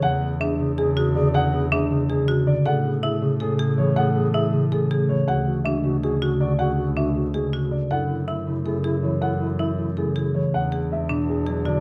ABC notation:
X:1
M:7/8
L:1/8
Q:1/4=160
K:Emix
V:1 name="Grand piano"
f z e z G z d | f z e z G z d | f z e z G z c | f z e z G z c |
f z e z G z d | f z e z G z d | f z e z G z c | f z e z G z c |
f z e z G z d |]
V:2 name="Marimba"
G z D z G F z | G z D z G F z | A z E z A G z | A z E z A G z |
G z D z G F z | G z D z G F z | A z E z A G z | A z E z A G z |
z G z D z G F |]
V:3 name="Alto flute"
G G G G G G G | G G G G G G z | G G G G G G G | G G G G G G z |
F F F F F F F | F F F F F F z | E E E E E E E | E E E E E E z |
D6- D |]
V:4 name="Harp" clef=bass
B, B, G, C, G,2 D,- | D, B, G, C, G,2 D, | z B, A, C, A,2 E,- | E, B, A, C, A,2 E, |
z A, G, C, G,2 D,- | D, A, G, C, G,2 D, | z B, A, C, A,2 E,- | E, B, A, C, A,2 E, |
z B, G, B,, G, F, D, |]
V:5 name="Double bass" clef=bass
E,,6- E,,- | E,,6- E,, | A,,6- A,,- | A,,6- A,, |
D,,6- D,,- | D,,6- D,, | F,,6- F,,- | F,,6- F,, |
E,,6- E,, |]